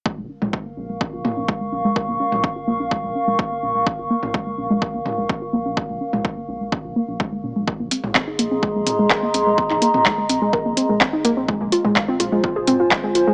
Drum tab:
HH |----------------|----------------|----------------|----------------|
CP |----------------|----------------|----------------|----------------|
T2 |---o------o-----|---o------------|---o------o-----|---o------------|
BD |o---o---o---o---|o---o---o---o---|o---o---o---o---|o---o---o---o---|

HH |--x---x---x---x-|--x---x---x---x-|--x---x---x---x-|
CP |----x-------x---|-x--x-------x---|----x-------x---|
T2 |---o------o-----|---o------------|---o------o-----|
BD |o---o---o---o---|o---o---o---o---|o---o---o---o---|